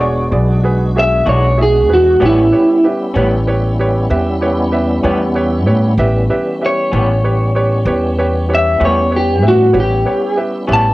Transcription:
0.00 0.28 E1 medium
0.00 2.17 G#3 medium
0.00 2.17 B3 medium
0.00 2.17 D4 medium
0.00 0.24 F#4 medium
0.00 2.17 F#4 medium
0.00 0.24 G#4 medium
0.00 0.37 C#5 medium
0.00 0.24 D5 medium
0.31 1.22 B1 medium
0.31 0.55 F#4 medium
0.31 0.56 G#4 medium
0.31 0.56 D5 medium
0.37 0.94 B4 medium
0.63 0.87 F#4 medium
0.63 0.87 G#4 medium
0.63 0.88 B4 medium
0.96 1.19 F#4 medium
0.96 1.19 G#4 soft
0.96 1.20 E5 medium
0.96 1.28 E5 medium
1.26 1.89 B1 medium
1.26 1.46 E3 medium
1.26 1.46 G#3 medium
1.26 1.45 D4 medium
1.26 1.45 F#4 medium
1.26 1.50 F#4 medium
1.26 1.50 G#4 soft
1.26 1.58 C#5 medium
1.26 1.51 D5 medium
1.58 1.82 F#4 medium
1.58 1.82 G#4 soft
1.58 1.82 E5 medium
1.62 1.91 G#4 medium
1.89 2.18 E2 medium
1.89 2.13 F#4 medium
1.89 2.13 G#4 soft
1.89 2.13 B4 medium
1.94 2.22 F#4 medium
2.20 2.50 A1 medium
2.20 2.39 A2 medium
2.20 5.94 G3 medium
2.20 2.40 G3 medium
2.20 5.95 B3 medium
2.20 2.40 B3 medium
2.20 5.94 C#4 medium
2.20 2.41 C#4 medium
2.20 5.95 E4 medium
2.20 2.44 G4 medium
2.20 2.44 B4 medium
2.20 2.45 C#5 medium
2.26 2.84 E4 medium
2.52 2.76 G4 medium
2.52 2.76 B4 soft
2.52 2.76 C#5 medium
2.84 3.08 G4 medium
2.84 3.08 B4 soft
2.84 3.08 E5 medium
3.14 4.06 A1 medium
3.14 3.35 A2 medium
3.14 3.35 G3 medium
3.14 3.34 B3 medium
3.14 3.34 C#4 medium
3.14 3.39 G4 medium
3.14 3.40 B4 medium
3.14 3.40 C#5 medium
3.47 3.71 G4 medium
3.47 3.71 B4 medium
3.47 3.71 C#5 medium
3.79 4.02 G4 medium
3.79 4.03 B4 medium
3.79 4.03 C#5 medium
4.10 5.00 E2 medium
4.10 4.33 G4 medium
4.10 4.34 B4 medium
4.10 4.34 E5 medium
4.41 4.65 G4 medium
4.41 4.65 B4 medium
4.41 4.65 C#5 medium
4.72 4.96 G4 medium
4.72 4.96 B4 medium
4.72 4.96 E5 medium
5.03 5.67 E2 medium
5.03 5.24 A2 medium
5.03 5.23 G3 medium
5.03 5.23 B3 medium
5.03 5.23 C#4 medium
5.03 5.27 G4 medium
5.03 5.28 B4 medium
5.03 5.28 C#5 medium
5.35 5.59 G4 medium
5.35 5.59 B4 medium
5.35 5.59 C#5 medium
5.66 5.96 A2 medium
5.66 5.90 G4 medium
5.66 5.90 B4 medium
5.66 5.91 C#5 medium
5.98 6.27 A1 medium
5.98 9.71 E3 medium
5.98 9.71 G3 medium
5.98 9.71 B3 medium
5.98 9.71 C#4 medium
5.98 6.22 G4 medium
5.98 6.22 B4 medium
5.98 6.22 E5 medium
6.30 6.53 G4 medium
6.30 6.54 B4 medium
6.30 6.54 E5 medium
6.61 6.85 G4 medium
6.61 6.85 B4 soft
6.61 6.85 E5 medium
6.66 8.48 C#5 medium
6.92 7.83 A1 medium
6.92 7.12 A2 soft
6.92 7.12 G3 medium
6.92 7.11 B3 medium
6.92 7.11 C#4 medium
6.92 7.16 G4 medium
6.92 7.16 B4 soft
6.92 7.16 C#5 medium
7.24 7.48 G4 medium
7.24 7.48 B4 medium
7.24 7.48 C#5 medium
7.55 7.79 G4 medium
7.55 7.79 B4 medium
7.55 7.79 C#5 medium
7.85 8.76 E2 loud
7.85 8.10 G4 medium
7.85 8.10 B4 medium
7.85 8.11 C#5 medium
8.18 8.42 G4 medium
8.18 8.42 B4 medium
8.18 8.42 C#5 medium
8.49 8.73 G4 medium
8.49 8.73 B4 soft
8.49 8.73 C#5 medium
8.55 8.83 E5 medium
8.80 9.43 E2 medium
8.80 9.00 A2 medium
8.80 9.00 G3 medium
8.80 8.99 B3 medium
8.80 8.99 C#4 medium
8.80 9.04 G4 medium
8.80 9.04 B4 medium
8.80 9.04 E5 medium
8.85 9.14 C#5 medium
9.11 9.35 G4 medium
9.11 9.35 B4 soft
9.11 9.36 C#5 medium
9.16 9.45 G4 medium
9.42 9.72 A2 medium
9.42 9.66 G4 medium
9.42 9.67 B4 soft
9.42 9.67 E5 medium
9.48 9.76 F#4 medium
9.73 10.03 A1 medium
9.73 10.94 G3 medium
9.73 10.94 B3 medium
9.73 10.94 C#4 medium
9.73 10.94 E4 medium
9.73 9.98 G4 medium
9.73 9.98 B4 medium
9.73 9.98 C#5 medium
9.80 10.38 G4 loud
10.05 10.29 G4 medium
10.05 10.30 B4 soft
10.05 10.30 C#5 medium
10.37 10.61 G4 medium
10.37 10.61 B4 soft
10.37 10.61 E5 medium
10.68 10.94 A1 medium
10.68 10.88 A2 medium
10.68 10.88 G3 medium
10.68 10.88 B3 medium
10.68 10.87 C#4 medium
10.68 10.92 G4 medium
10.68 10.92 B4 soft
10.68 10.92 E5 medium
10.73 10.94 A5 medium

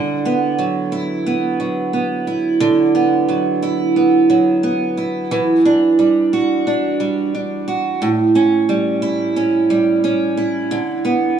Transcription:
0.00 2.60 D3 medium
0.00 0.61 E4 medium
0.25 1.26 B3 medium
0.58 1.59 F#3 medium
0.92 2.27 E4 medium
1.26 1.93 B3 medium
1.60 3.28 F#3 soft
1.93 2.94 B3 soft
2.27 3.62 E4 medium
2.60 5.31 D3 medium
2.95 3.96 B3 medium
3.28 4.29 F#3 medium
3.63 4.97 E4 medium
3.96 4.63 B3 medium
4.30 5.98 F#3 medium
4.63 5.65 B3 medium
4.97 5.68 E4 medium
5.31 8.81 E3 medium
5.65 6.66 D4 medium
5.99 7.00 G3 medium
6.33 7.66 F#4 medium
6.67 7.33 D4 medium
7.00 8.38 G3 medium
7.35 8.09 D4 soft
7.68 8.08 F#4 medium
8.02 10.72 A2 medium
8.35 9.35 C#4 medium
8.69 9.69 G3 medium
9.02 10.37 E4 medium
9.36 10.03 C#4 medium
9.70 10.78 G3 medium
10.04 10.78 C#4 medium
10.37 11.39 E4 medium
10.71 11.39 D3 medium
11.05 11.39 B3 medium

